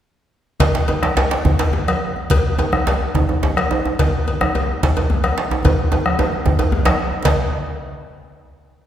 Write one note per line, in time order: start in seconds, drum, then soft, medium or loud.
0.60 bombo low medium
0.60 cowbell medium
0.60 djembe slap medium
0.60 djembe bass medium
0.60 low conga medium
0.75 djembe slap medium
0.88 cowbell soft
0.88 djembe tone medium
1.03 bombo rim medium
1.03 djembe slap medium
1.03 high conga medium
1.17 cowbell medium
1.17 djembe slap medium
1.17 high conga soft
1.17 djembe bass medium
1.31 djembe slap medium
1.31 djembe tone medium
1.45 bombo low loud
1.45 djembe tone medium
1.45 low conga medium
1.59 bombo rim soft
1.59 cowbell medium
1.59 djembe slap medium
1.59 high conga soft
1.73 djembe slap medium
1.73 djembe tone medium
1.73 high conga soft
1.88 bombo rim medium
1.88 cowbell medium
1.88 high conga medium
2.16 djembe slap soft
2.16 djembe tone medium
2.16 high conga soft
2.30 bombo low medium
2.30 cowbell medium
2.30 djembe slap medium
2.30 low conga medium
2.30 djembe bass medium
2.58 cowbell medium
2.58 djembe tone medium
2.72 bombo rim medium
2.72 high conga medium
2.72 djembe tone medium
2.87 cowbell medium
2.87 djembe slap medium
2.87 high conga soft
2.87 djembe bass medium
3.00 djembe tone medium
3.15 bombo low loud
3.15 djembe tone loud
3.15 low conga medium
3.29 bombo rim soft
3.29 djembe tone medium
3.29 high conga soft
3.43 djembe slap medium
3.43 djembe tone medium
3.43 high conga soft
3.43 djembe bass medium
3.57 bombo rim medium
3.57 cowbell soft
3.57 high conga medium
3.71 djembe tone loud
3.85 djembe slap soft
3.85 high conga soft
3.85 djembe tone medium
3.99 bombo low medium
3.99 cowbell medium
3.99 djembe slap medium
3.99 low conga medium
3.99 djembe bass medium
4.27 cowbell soft
4.27 djembe tone medium
4.41 bombo rim medium
4.41 djembe tone medium
4.41 high conga medium
4.55 cowbell soft
4.55 djembe slap medium
4.55 high conga soft
4.55 djembe bass medium
4.69 djembe tone medium
4.83 bombo low loud
4.83 djembe slap medium
4.83 low conga medium
4.96 bombo rim soft
4.96 cowbell soft
4.96 high conga soft
4.96 djembe tone medium
5.10 djembe slap medium
5.10 djembe tone medium
5.10 high conga soft
5.10 djembe bass medium
5.24 bombo rim medium
5.24 cowbell soft
5.24 high conga medium
5.38 djembe slap medium
5.51 djembe slap soft
5.51 djembe tone medium
5.51 high conga soft
5.51 djembe tone loud
5.65 bombo low loud
5.65 cowbell medium
5.65 djembe slap medium
5.65 high conga soft
5.65 djembe tone medium
5.65 djembe bass medium
5.65 low conga medium
5.78 bombo rim soft
5.78 djembe slap soft
5.78 high conga soft
5.92 cowbell soft
5.92 djembe tone medium
6.06 bombo rim medium
6.06 high conga medium
6.19 bombo rim soft
6.19 cowbell soft
6.19 djembe slap medium
6.19 djembe tone medium
6.19 high conga soft
6.19 djembe bass medium
6.32 djembe slap soft
6.32 djembe tone medium
6.32 high conga soft
6.45 bombo low medium
6.45 djembe slap soft
6.45 djembe tone loud
6.45 high conga soft
6.45 low conga medium
6.59 cowbell soft
6.59 djembe slap soft
6.59 high conga soft
6.59 djembe tone loud
6.72 djembe slap medium
6.72 djembe tone medium
6.72 djembe bass medium
6.85 bombo rim medium
6.85 cowbell soft
6.85 djembe slap loud
6.85 djembe slap soft
6.85 high conga medium
7.13 bombo rim soft
7.13 djembe slap soft
7.13 djembe tone medium
7.25 bombo low medium
7.25 cowbell medium
7.25 djembe slap loud
7.25 low conga medium
7.25 djembe bass medium